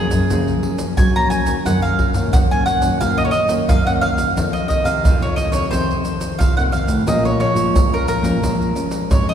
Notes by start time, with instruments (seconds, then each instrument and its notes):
Already playing: nylon-string guitar C#3 F3 A#3 C#4, mandolin G#4
0.11 nylon-string guitar F#2, pandeiro, shaker
0.30 nylon-string guitar F#2 C#3 F3 A#3 C#4, pandeiro, shaker, surdo
0.48 pandeiro, shaker
0.62 nylon-string guitar F3 A#3 C#4, pandeiro
0.78 pandeiro, shaker
0.97 nylon-string guitar C#3 F#3, mandolin G#5, pandeiro, shaker, surdo
1.16 nylon-string guitar F3 A#3 C#4, mandolin A#5, pandeiro, shaker
1.30 mandolin G#5, pandeiro, shaker
1.46 nylon-string guitar D#3 A#3 C#4, pandeiro, shaker
1.65 nylon-string guitar F#2, mandolin F#5, pandeiro, shaker, surdo
1.82 mandolin F5, pandeiro, shaker
1.99 pandeiro, surdo
2.14 nylon-string guitar A#2 D#3 A#3 C#4, pandeiro, shaker
2.33 nylon-string guitar F#2, mandolin F#5, pandeiro, shaker, surdo
2.51 nylon-string guitar D#3 A#3 C#4, mandolin G#5, pandeiro, shaker
2.66 mandolin F#5, pandeiro, shaker
2.81 nylon-string guitar F#2, pandeiro, shaker
3.00 nylon-string guitar F#2 A#2 D#3 A#3 C#4, mandolin F5, pandeiro, shaker, surdo
3.18 mandolin D#5, pandeiro, shaker
3.25 mandolin C#5
3.31 mandolin D#5, pandeiro, shaker
3.49 nylon-string guitar D#3 A#3 C#4, pandeiro, shaker
3.68 nylon-string guitar F#2, mandolin F5, pandeiro, shaker, surdo
3.86 nylon-string guitar D#3 A#3 C#4, mandolin F#5, pandeiro, shaker
4.01 mandolin F5, pandeiro
4.18 pandeiro, shaker
4.36 nylon-string guitar F2 D#3 A3 C4, pandeiro, shaker, surdo
4.53 mandolin D#5, pandeiro, shaker
4.68 nylon-string guitar D#3 A3 C4, mandolin D#5, pandeiro, shaker, surdo
4.84 nylon-string guitar C3, mandolin F5, pandeiro, shaker
5.03 nylon-string guitar F2 C3, pandeiro, shaker, surdo
5.20 nylon-string guitar D#3 A3 C4, mandolin C#5, pandeiro, shaker
5.36 mandolin D#5, pandeiro, shaker
5.52 nylon-string guitar F2 D#3 A3 C4, mandolin C#5, pandeiro, shaker
5.71 nylon-string guitar F2 C3 D#3 A3 C4, mandolin C5, pandeiro, shaker, surdo
5.90 pandeiro, shaker
6.04 nylon-string guitar D#3 A3 C4, pandeiro, shaker
6.21 pandeiro, shaker
6.39 nylon-string guitar C3 F3, mandolin F5, pandeiro, shaker, surdo
6.57 nylon-string guitar D#2 D#3 A3 C4, mandolin F#5, pandeiro, shaker
6.72 nylon-string guitar F2, mandolin F5, pandeiro, shaker
6.87 nylon-string guitar A2, pandeiro, shaker
7.07 nylon-string guitar A#2 F3 G#3 C#4, mandolin D#5, pandeiro, shaker, surdo
7.25 mandolin C#5, pandeiro, shaker
7.40 nylon-string guitar F3 G#3 C#4, mandolin C#5, pandeiro
7.55 nylon-string guitar F3, pandeiro, shaker
7.74 nylon-string guitar F2 A#2, pandeiro, shaker, surdo
7.92 nylon-string guitar F3 G#3 C#4, mandolin A#4, pandeiro, shaker
8.08 mandolin A#4, pandeiro, shaker
8.22 nylon-string guitar A#2 F3 G#3 C#4, pandeiro, shaker
8.41 nylon-string guitar A#2 F3 G#3 C#4, pandeiro, shaker, surdo
8.62 pandeiro, shaker
8.74 nylon-string guitar F3 G#3 C#4, pandeiro, shaker
8.91 pandeiro, shaker
9.09 nylon-string guitar F2 G#2, mandolin C#5, pandeiro, shaker, surdo
9.26 nylon-string guitar F3 G#3 C#4, mandolin D#5, pandeiro, shaker